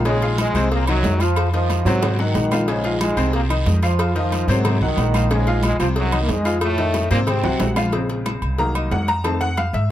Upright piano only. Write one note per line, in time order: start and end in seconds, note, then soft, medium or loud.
0.05 0.19 C#3 medium
0.05 0.19 C#4 medium
0.05 0.19 C#5 medium
0.22 0.49 F3 medium
0.22 0.49 F4 medium
0.22 0.49 F5 medium
0.55 0.82 C3 loud
0.55 0.82 C4 medium
0.55 0.82 C5 loud
0.88 1.15 D#3 medium
0.88 1.15 D#4 medium
0.88 1.15 D#5 medium
1.21 1.48 F3 medium
1.21 1.48 F4 medium
1.21 1.48 F5 medium
1.53 1.80 D#3 medium
1.53 1.80 D#4 medium
1.53 1.81 D#5 medium
1.86 2.13 C3 medium
1.86 2.13 C4 loud
1.86 2.14 C5 medium
2.19 2.46 F#3 medium
2.19 2.46 F#4 medium
2.19 2.46 F#5 medium
2.52 2.65 F3 medium
2.52 2.66 F4 medium
2.52 2.66 F5 medium
2.68 2.82 C#3 medium
2.68 2.82 C#4 medium
2.68 2.82 C#5 medium
2.84 3.11 F3 medium
2.84 3.11 F4 medium
2.84 3.12 F5 medium
3.17 3.44 C3 medium
3.17 3.44 C4 loud
3.17 3.44 C5 medium
3.50 3.77 D#3 medium
3.50 3.77 D#4 medium
3.50 3.77 D#5 medium
3.83 4.10 F3 medium
3.83 4.10 F4 medium
3.83 4.10 F5 medium
4.15 4.42 D#3 medium
4.15 4.43 D#4 medium
4.15 4.43 D#5 medium
4.49 4.76 C3 loud
4.49 4.76 C4 medium
4.49 4.76 C5 medium
4.82 5.09 F#3 medium
4.82 5.09 F#4 medium
4.82 5.09 F#5 medium
5.14 5.28 F3 medium
5.14 5.28 F4 medium
5.14 5.28 F5 medium
5.31 5.44 C#3 medium
5.31 5.44 C#4 medium
5.31 5.45 C#5 medium
5.47 5.74 F3 medium
5.47 5.74 F4 medium
5.47 5.74 F5 medium
5.80 6.07 C3 medium
5.80 6.07 C4 medium
5.80 6.07 C5 medium
6.12 6.39 D#3 medium
6.12 6.40 D#4 medium
6.12 6.40 D#5 medium
6.45 6.72 F3 medium
6.45 6.72 F4 medium
6.45 6.73 F5 medium
6.78 7.05 D#3 medium
6.78 7.05 D#4 medium
6.78 7.05 D#5 medium
7.11 7.38 C3 loud
7.11 7.38 C4 loud
7.11 7.38 C5 loud
7.44 7.71 F#3 medium
7.44 7.71 F#4 medium
7.44 7.71 F#5 medium
7.76 7.90 F3 medium
7.76 7.90 F4 medium
7.76 7.90 F5 medium
7.93 8.55 C#3 medium
7.93 8.56 G#3 soft
7.93 8.56 C4 medium
8.59 9.06 D#3 medium
8.59 9.06 F#3 medium
8.59 9.06 A#3 medium
8.59 8.75 A#5 medium
8.76 8.91 D#5 medium
8.92 9.08 F#5 medium
9.08 9.24 A#5 loud
9.24 9.46 D#3 medium
9.24 9.46 A3 soft
9.24 9.47 C4 medium
9.24 9.40 A5 medium
9.41 9.57 F#5 medium
9.58 9.74 F5 medium
9.74 9.90 E5 medium